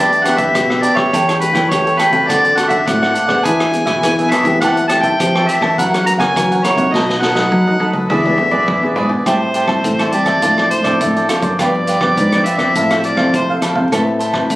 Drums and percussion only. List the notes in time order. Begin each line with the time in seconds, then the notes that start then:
0.13 closed hi-hat
0.25 cross-stick, closed hi-hat
0.38 kick, closed hi-hat
0.55 kick, cross-stick, closed hi-hat
0.70 cross-stick
0.83 closed hi-hat
0.97 kick, cross-stick
1.13 kick, closed hi-hat
1.29 cross-stick, closed hi-hat
1.41 closed hi-hat
1.55 kick, cross-stick, closed hi-hat
1.71 kick, cross-stick, closed hi-hat
1.87 closed hi-hat
1.99 cross-stick, closed hi-hat
2.12 kick, closed hi-hat
2.29 kick, cross-stick, closed hi-hat
2.45 closed hi-hat
2.57 cross-stick, closed hi-hat
2.70 kick, closed hi-hat
2.87 kick, cross-stick, closed hi-hat
3.03 cross-stick
3.15 closed hi-hat
3.29 kick, cross-stick
3.45 kick, closed hi-hat
3.60 cross-stick, closed hi-hat
3.73 closed hi-hat
3.87 kick, cross-stick, closed hi-hat
4.03 kick, cross-stick, closed hi-hat
4.19 closed hi-hat
4.32 cross-stick, closed hi-hat
4.45 kick, closed hi-hat
4.61 kick, cross-stick, closed hi-hat
4.77 closed hi-hat
4.89 cross-stick, closed hi-hat
5.03 kick, closed hi-hat
5.20 kick, cross-stick, closed hi-hat
5.35 cross-stick
5.49 closed hi-hat
5.62 kick, cross-stick
5.78 kick, closed hi-hat
5.94 cross-stick, closed hi-hat
6.07 closed hi-hat
6.20 kick, cross-stick, closed hi-hat
6.36 kick, cross-stick, closed hi-hat
6.52 closed hi-hat
6.64 cross-stick, closed hi-hat
6.78 kick, closed hi-hat
6.94 kick, snare
7.09 snare
7.22 snare
7.35 snare
7.52 kick, high tom
7.67 high tom
7.80 high tom
7.93 mid tom
8.10 kick, mid tom
8.25 mid tom
8.38 mid tom
8.51 mid tom
8.68 kick, mid tom
8.83 floor tom
8.96 floor tom
9.09 floor tom
9.26 kick, cross-stick, closed hi-hat
9.54 closed hi-hat
9.67 kick, cross-stick
9.84 kick, closed hi-hat
9.99 cross-stick, closed hi-hat
10.12 closed hi-hat
10.26 kick, cross-stick, closed hi-hat
10.42 kick, closed hi-hat
10.58 cross-stick
10.71 closed hi-hat
10.84 kick, cross-stick, closed hi-hat
11.01 kick, closed hi-hat
11.16 closed hi-hat
11.29 cross-stick, closed hi-hat
11.42 kick, closed hi-hat
11.59 kick, cross-stick, closed hi-hat
11.87 closed hi-hat
12.01 kick, cross-stick
12.17 kick, closed hi-hat
12.32 cross-stick, closed hi-hat
12.46 closed hi-hat
12.59 kick, cross-stick, closed hi-hat
12.75 kick, closed hi-hat
12.90 cross-stick, closed hi-hat
13.04 closed hi-hat
13.17 kick, cross-stick
13.34 kick, closed hi-hat
13.62 cross-stick, closed hi-hat
13.76 kick
13.92 kick, cross-stick, closed hi-hat
14.20 closed hi-hat
14.34 kick, cross-stick
14.50 kick, closed hi-hat